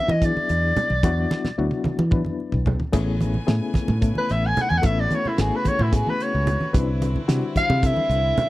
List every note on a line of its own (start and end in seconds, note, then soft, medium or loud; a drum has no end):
0.00 0.13 F#3 medium
0.00 0.13 B3 medium
0.00 0.13 D4 medium
0.00 0.13 E4 medium
0.00 0.13 B4 medium
0.00 0.13 E5 loud
0.08 0.30 E3 loud
0.08 0.27 D#5 medium
0.08 muted conga medium
0.08 low conga medium
0.22 0.90 F#3 medium
0.22 0.90 B3 medium
0.22 0.90 D4 medium
0.22 0.90 E4 medium
0.22 0.90 G#4 medium
0.22 1.87 D5 medium
0.22 kick loud
0.22 closed hi-hat medium
0.36 muted fingered electric bass stroke soft
0.36 high conga medium
0.49 0.71 E2 medium
0.49 closed hi-hat medium
0.77 closed hi-hat medium
0.77 low conga medium
0.90 1.01 B1 medium
0.90 high conga medium
1.03 1.25 E2 loud
1.03 1.49 F#3 medium
1.03 1.49 B3 medium
1.03 1.49 D4 medium
1.03 1.49 E4 medium
1.03 1.49 F#4 loud
1.03 kick loud
1.03 closed hi-hat medium
1.03 muted conga medium
1.18 low conga soft
1.31 snare medium
1.31 high conga medium
1.45 snare medium
1.45 low conga medium
1.58 1.69 D2 medium
1.58 2.04 F#3 medium
1.58 2.03 B3 medium
1.58 2.04 D4 medium
1.58 2.04 E4 medium
1.58 2.04 F#4 medium
1.71 high tom medium
1.84 muted fingered electric bass stroke soft
1.84 high tom medium
1.84 high conga medium
1.84 low conga soft
1.99 2.21 E3 medium
1.99 muted conga medium
1.99 low conga medium
2.11 2.80 F#3 medium
2.11 2.80 B3 medium
2.11 2.80 D4 medium
2.11 2.80 E4 medium
2.11 2.80 B4 medium
2.11 kick loud
2.11 mid tom medium
2.25 mid tom medium
2.25 high conga medium
2.40 low conga soft
2.52 2.75 B1 medium
2.52 floor tom medium
2.52 low conga soft
2.66 floor tom medium
2.66 low conga loud
2.80 floor tom medium
2.80 high conga medium
2.92 3.37 A1 medium
2.92 6.71 C#3 medium
2.92 3.39 A3 loud
2.92 6.71 A3 medium
2.92 3.39 B3 medium
2.92 3.39 C#4 medium
2.92 3.39 E4 medium
2.92 3.39 G#4 loud
2.92 8.49 B4 medium
2.92 4.83 G#5 medium
2.92 kick loud
2.92 closed hi-hat medium
2.92 crash medium
2.92 muted conga medium
3.21 closed hi-hat medium
3.21 high conga medium
3.34 low conga medium
3.47 3.59 A2 medium
3.47 3.93 A3 medium
3.47 3.93 B3 medium
3.47 3.93 C#4 medium
3.47 3.93 E4 medium
3.47 3.93 G#4 medium
3.47 snare loud
3.47 closed hi-hat medium
3.61 low conga soft
3.74 muted fingered electric bass stroke soft
3.74 kick medium
3.74 snare soft
3.74 closed hi-hat medium
3.74 high conga medium
3.74 low conga soft
3.88 4.11 A2 medium
3.88 muted conga medium
3.88 low conga medium
4.01 4.70 A3 medium
4.01 4.70 B3 medium
4.01 4.70 C#4 medium
4.01 4.71 E4 medium
4.01 4.70 A4 medium
4.01 kick loud
4.01 closed hi-hat medium
4.15 4.33 B4 medium
4.15 muted fingered electric bass stroke soft
4.15 high conga medium
4.29 4.52 A1 medium
4.29 4.48 E5 medium
4.29 snare soft
4.29 closed hi-hat medium
4.47 4.63 G#5 loud
4.57 closed hi-hat medium
4.57 low conga medium
4.61 4.71 F#5 medium
4.70 4.82 E2 medium
4.70 4.79 G#5 loud
4.70 high conga medium
4.78 4.87 F#5 medium
4.82 5.06 A1 loud
4.82 5.29 A3 medium
4.82 5.29 B3 medium
4.82 5.29 C#4 medium
4.82 5.29 E4 medium
4.82 6.72 F#4 medium
4.82 5.29 A4 medium
4.82 5.02 E5 medium
4.82 kick loud
4.82 closed hi-hat medium
4.82 muted conga medium
5.00 5.16 D5 medium
5.11 5.29 C#5 medium
5.11 closed hi-hat medium
5.11 high conga medium
5.25 5.42 E4 medium
5.25 low conga medium
5.38 5.50 G#1 medium
5.38 5.84 A3 medium
5.38 5.84 B3 medium
5.38 5.84 C#4 medium
5.38 5.84 E4 medium
5.38 5.84 G#4 medium
5.38 5.57 G#4 loud
5.38 snare loud
5.38 closed hi-hat medium
5.52 5.70 B4 medium
5.52 low conga soft
5.65 5.84 C#5 loud
5.65 muted fingered electric bass stroke soft
5.65 kick medium
5.65 closed hi-hat medium
5.65 high conga medium
5.65 low conga soft
5.79 6.02 A2 medium
5.79 5.96 E4 medium
5.79 muted conga medium
5.79 low conga medium
5.92 6.61 A3 medium
5.92 6.61 B3 medium
5.92 6.61 C#4 medium
5.92 6.61 E4 medium
5.92 6.61 G#4 medium
5.92 6.11 G#4 loud
5.92 kick loud
5.92 snare soft
5.92 closed hi-hat medium
6.07 6.24 B4 medium
6.07 high conga medium
6.20 6.76 C#5 medium
6.20 closed hi-hat medium
6.35 6.56 C#2 medium
6.47 closed hi-hat medium
6.47 low conga medium
6.61 high conga medium
6.73 7.17 C2 loud
6.73 8.49 D3 medium
6.73 7.19 G3 medium
6.73 7.19 C4 medium
6.73 8.49 C4 medium
6.73 7.20 D4 medium
6.73 7.19 E4 medium
6.73 8.49 E4 medium
6.73 7.19 B4 medium
6.73 kick loud
6.73 closed hi-hat medium
6.73 muted conga medium
7.02 closed hi-hat medium
7.02 high conga medium
7.16 low conga medium
7.28 7.40 C3 medium
7.28 7.74 G3 medium
7.28 7.74 C4 medium
7.28 7.74 D4 medium
7.28 7.74 E4 medium
7.28 7.74 F#4 medium
7.28 snare loud
7.28 closed hi-hat medium
7.43 low conga soft
7.56 7.87 F5 loud
7.56 muted fingered electric bass stroke soft
7.56 kick medium
7.56 closed hi-hat medium
7.56 high conga medium
7.56 low conga soft
7.70 7.91 C3 medium
7.70 muted conga medium
7.70 low conga medium
7.82 8.49 G3 medium
7.82 8.49 C4 medium
7.82 8.49 D4 medium
7.82 8.49 E4 medium
7.82 8.49 A4 medium
7.82 8.49 E5 loud
7.82 kick loud
7.82 closed hi-hat medium
7.97 muted fingered electric bass stroke soft
7.97 high conga medium
8.09 8.31 C2 loud
8.09 closed hi-hat medium
8.37 closed hi-hat medium
8.37 low conga loud